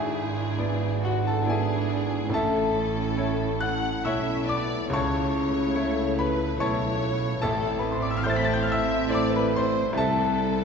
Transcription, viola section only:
Already playing: D4 E4
1.46 D4 E4
2.30 C#4 E4
4.04 C#4 E4
4.48 B3
4.90 A3 E4
6.61 A3 E4
7.01 A3
7.44 C4 E4
9.94 C4 E4

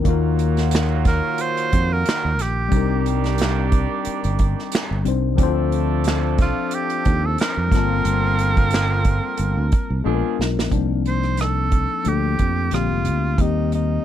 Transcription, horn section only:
0.05 A#2 F#3 F4 F#4
2.71 D#3 G3 D4 G4
5.38 F3 A3 D4 A4
7.71 D3 F3 C4 F4
10.05 F3 G#3 D4 G#4

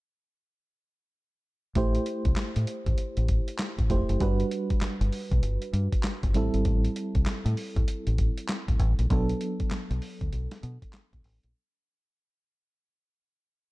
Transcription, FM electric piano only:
1.75 A3 E4 G4 C5
3.90 A3 E4 G4 C5
4.20 G3 D4 F#4 B4
6.34 G3 C4 E4 A4
9.10 F#3 B3 D4 A4

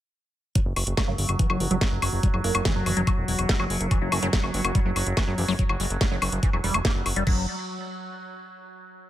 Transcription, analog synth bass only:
0.66 F#1
0.76 F#1
0.87 F#1
1.08 F#1
1.18 G1
1.29 F#1
1.50 F#1
1.60 F#1
1.71 F#1
1.92 F#1
2.02 F#1
2.13 F#1
2.34 F#1
2.44 F#1
2.55 F#1
2.76 F#1
2.86 F#1
2.97 F#1
3.18 E1
3.28 E1
3.39 E1
3.60 F#1
3.70 F#1
3.81 F#1
4.02 F#1
4.12 F#1
4.23 F#1
4.43 F#1
4.54 G1
4.64 F#1
4.85 F#1
4.96 F#1
5.06 F#1
5.27 F#1
5.38 F#1
5.48 F#1
5.69 F#1
5.80 F#1
5.90 F#1
6.11 F#1
6.22 F#1
6.32 F#1
6.53 E1
6.64 E1
6.74 E1
6.95 F#1
7.06 F#1
7.16 F#1
7.27 F#1

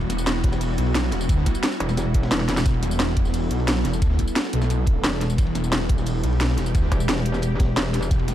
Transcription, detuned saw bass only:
Already playing: E1
0.78 B1
1.12 E1
1.29 D2
2.66 E1
3.51 B1
3.85 E1
4.02 D2
4.53 B1
5.38 E1
6.24 B1
6.58 E1
6.75 D2
8.11 E1

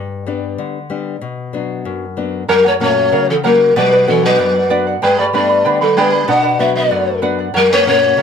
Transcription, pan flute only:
2.50 A#4
2.67 C#5
2.82 C#5
3.30 A4
3.46 A#4
3.76 B4
4.08 A4
4.24 B4
5.04 B4
5.19 D5
5.35 D5
5.81 A4
5.98 B4
6.28 F#5
6.60 E5
6.75 D5
7.56 A#4
7.72 C#5
7.87 C#5

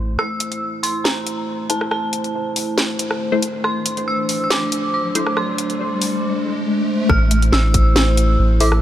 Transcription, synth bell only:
0.19 E6
0.83 C6
1.04 A#5
1.70 A5
1.91 A5
3.64 C6
4.08 E6
4.44 E6
4.51 D6
4.94 D6
5.37 C6
7.10 F6
7.53 E6
7.96 E6
8.61 D6

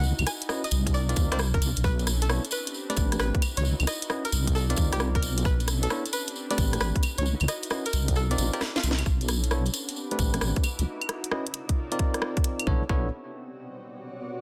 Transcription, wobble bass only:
Already playing: C#2
0.19 C#2
0.72 C2
1.17 D#2
1.32 C2
1.54 G1
1.62 C2
1.77 B1
2.97 A1
3.20 A1
3.57 C#2
3.80 C#2
4.33 C2
4.78 D#2
4.93 C2
5.23 B1
6.58 A1
6.81 A1
7.18 C#2
7.41 C#2
7.93 C2
8.38 A#1
8.84 C2
9.06 B1
10.19 A1
10.42 A1
10.79 C#2
12.67 B1
12.89 B1

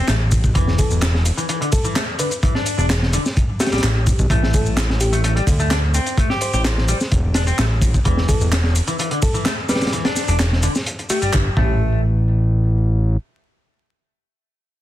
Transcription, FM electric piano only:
0.78 A4
1.72 A4
2.19 B4
3.60 G4
4.54 A4
5.01 G4
6.42 C5
8.28 A4
9.23 A4
9.70 B4
11.10 G4

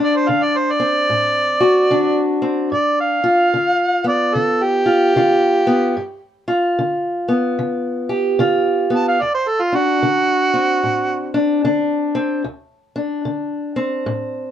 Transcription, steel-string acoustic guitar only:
Already playing: D2 D4
0.29 D3
0.80 C4
1.10 A2
1.60 F#4
1.91 D3 D4
2.42 C4
2.72 G2
3.24 F4
3.54 D3
4.04 B3
4.35 D3
4.86 F4
5.16 D3 F4
5.67 B3
5.97 G2
6.48 F4
6.79 D3
7.28 B3
7.59 D3
8.09 G4
8.39 D3 F4
8.90 B3
9.22 D2
9.72 D4
10.03 D3
10.54 C4
10.83 A2
11.34 D4
11.64 D3 D4
12.15 C4
12.44 D2
12.96 D4
13.25 D3
13.76 C4
14.06 A2

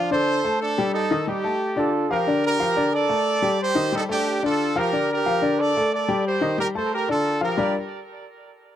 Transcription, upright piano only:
0.11 D3 D4 D5
0.44 A3 A4 A5
0.78 G3 G4 G5
1.11 D#3 D#4 D#5
1.27 G3 G4 G5
1.44 A3 A4 A5
1.76 D3 D4 D5
2.10 F3 F4 F5
2.27 D3 D4 D5
2.59 F3 F4 F5
2.76 D3 D4 D5
3.09 A3 A4 A5
3.42 G3 G4 G5
3.75 D#3 D#4 D#5
3.92 G3 G4 G5
4.09 A3 A4 A5
4.43 D3 D4 D5
4.75 F3 F4 F5
4.93 D3 D4 D5
5.26 F3 F4 F5
5.42 D3 D4 D5
5.76 A3 A4 A5
6.08 G3 G4 G5
6.41 D#3 D#4 D#5
6.58 G3 G4 G5
6.75 A3 A4 A5
7.08 D3 D4 D5
7.41 F3 F4 F5
7.58 G3 D4 F4 G4 A#4 D5

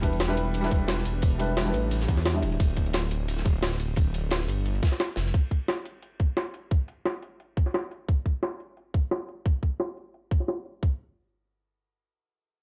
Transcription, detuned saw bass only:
Already playing: E1
1.06 E1
1.74 A1
2.08 E2
2.42 D1
2.60 D1
3.80 D1
4.48 G1
5.17 F1

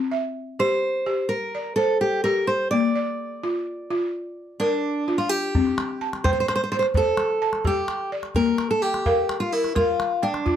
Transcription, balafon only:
Already playing: C4
0.12 E5
0.59 G4
1.06 G4
1.55 D5
1.77 C5
2.25 G4
2.72 A#3
2.96 D5
3.44 F4
3.90 F4
4.61 A#4
5.08 F4
5.55 C4
6.01 A5
6.25 C5 G5
6.72 C5
6.95 C5
7.42 A5
7.65 G4
8.12 D5
8.36 A#3
8.83 G5
9.06 A#4 F5
9.53 A#4
9.75 A#4
10.23 G5
10.46 F4

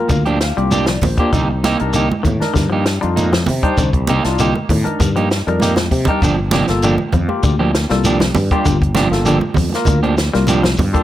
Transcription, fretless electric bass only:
0.10 D2
0.57 C2
1.02 A#1
1.33 C2
1.81 C2
2.24 A2
2.56 G2
3.03 F2
3.49 C3
3.78 C2
4.25 C2
4.70 A2
5.00 G2
5.47 F2
5.91 C3
6.22 G1
6.69 G1
7.13 F2
7.43 D2
7.91 C2
8.36 G2
8.66 G1
9.12 G1
9.57 F2
9.87 D2
10.35 C2
10.78 G2

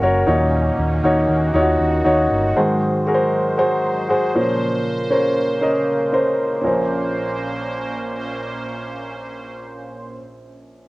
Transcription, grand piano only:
Already playing: C#3 F#4 A#4 C5 C#5
0.02 F#4 A#4 C#5
0.27 A#2 D#4 F#4 C#5
1.03 D#4 F#4 C#5
1.54 D#4 F4 C#5
1.61 F#4
2.04 D#4 F#4 C#5
2.56 G#2 D#3 F#4 G#4 C5
3.07 F#4 G#4 A#4
3.14 C5
3.57 F#4 G#4 C5
4.09 F#4 G#4 C5
4.35 A#2 F3 C#4 A#4 C5
5.10 C#4 A#4 C5
5.61 C#4 A#4 D#5
6.12 C#4 A#4 C5
6.61 A#1 C#4 A#4
6.67 C5

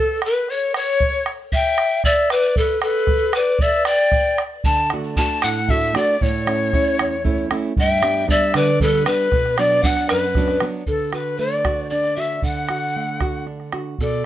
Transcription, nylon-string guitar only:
4.66 D3
4.93 A3 D4 F#4
5.18 A3 D4 F#4
5.44 A2
5.70 A3 D4 F#4
5.95 A3 D4 F#4
6.21 A2
6.47 A3 C#4 E4
6.74 A3 C#4 E4
7.00 E2
7.25 A3 C#4 E4
7.51 A3 C#4 E4
7.77 G2
8.02 G3 B3 D4
8.27 G3 B3 D4
8.55 D3
8.81 G3 B3 D4
9.06 G3 B3 D4
9.33 B2
9.58 F#3 B3 D4
9.84 F#3 B3 D4
10.11 F#2
10.36 F#3 B3 D4
10.61 F#3 B3 D4
10.87 D3
11.13 F#4
11.39 A3
11.65 F#4
11.92 D4
12.18 F#4
12.43 D3
12.70 F#4
12.96 A3
13.22 F#4
13.47 D4
13.73 F#4
14.01 B2

